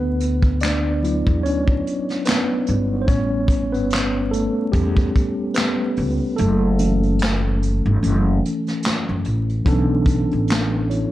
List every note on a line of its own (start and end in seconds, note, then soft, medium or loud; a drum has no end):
0.00 1.23 D2 loud
0.00 0.59 B3 medium
0.00 0.64 B4 loud
0.20 closed hi-hat medium
0.42 kick medium
0.60 1.41 D4 medium
0.60 1.46 D5 medium
0.60 clap medium
0.60 closed hi-hat medium
0.64 snare loud
1.03 2.22 F#3 medium
1.03 2.23 B3 soft
1.03 2.23 E4 medium
1.03 closed hi-hat medium
1.27 1.45 E2 medium
1.27 kick medium
1.43 1.80 D2 medium
1.43 2.23 C#4 medium
1.43 2.28 C#5 medium
1.43 closed hi-hat medium
1.68 kick medium
1.87 closed hi-hat medium
2.09 snare soft
2.09 closed hi-hat soft
2.25 2.88 B3 medium
2.25 2.87 B4 medium
2.25 snare loud
2.25 clap medium
2.25 closed hi-hat medium
2.66 3.09 G1 medium
2.66 closed hi-hat medium
3.02 3.08 C5 medium
3.08 3.75 A1 loud
3.08 4.28 G3 medium
3.08 3.73 B3 soft
3.08 3.70 C#4 medium
3.08 3.75 C#5 loud
3.08 kick loud
3.08 closed hi-hat medium
3.48 kick medium
3.48 closed hi-hat medium
3.72 4.45 G1 medium
3.72 4.28 B3 medium
3.72 4.33 B4 medium
3.72 closed hi-hat soft
3.90 clap medium
3.90 closed hi-hat medium
3.94 snare loud
4.31 4.51 A3 medium
4.31 4.50 A4 medium
4.31 closed hi-hat medium
4.72 5.09 E2 loud
4.72 5.52 G3 medium
4.72 5.10 B3 soft
4.72 5.10 C#4 medium
4.72 5.57 G4 medium
4.72 kick medium
4.72 closed hi-hat medium
4.97 kick loud
5.16 kick medium
5.16 closed hi-hat medium
5.54 6.34 B3 medium
5.54 6.33 B4 medium
5.54 snare loud
5.54 clap medium
5.54 closed hi-hat medium
5.96 6.18 C#2 medium
5.96 open hi-hat soft
6.36 7.82 F#1 loud
6.36 6.78 A3 medium
6.36 9.21 A4 medium
6.36 closed hi-hat medium
6.78 8.01 E3 medium
6.78 8.01 A3 soft
6.78 8.01 C#4 medium
6.78 closed hi-hat medium
7.03 closed hi-hat soft
7.19 clap medium
7.19 closed hi-hat medium
7.23 snare loud
7.62 closed hi-hat medium
7.86 8.00 G1 medium
8.02 8.38 F#1 medium
8.02 8.39 E3 soft
8.02 8.39 A3 soft
8.02 8.39 C#4 medium
8.02 closed hi-hat medium
8.45 closed hi-hat medium
8.67 snare soft
8.67 closed hi-hat soft
8.83 snare loud
8.83 clap medium
8.83 closed hi-hat medium
9.09 9.23 F#1 medium
9.24 9.61 A1 medium
9.24 closed hi-hat medium
9.49 closed hi-hat soft
9.65 10.23 B1 loud
9.65 10.82 E3 medium
9.65 10.83 B3 medium
9.65 10.83 C#4 medium
9.65 10.84 D4 medium
9.65 10.84 A4 medium
9.65 kick medium
9.65 closed hi-hat medium
10.06 kick medium
10.06 closed hi-hat medium
10.31 11.03 A1 medium
10.31 closed hi-hat soft
10.48 clap medium
10.48 closed hi-hat medium
10.52 snare loud
10.90 11.12 E4 medium
10.90 11.12 C#5 medium
10.90 closed hi-hat medium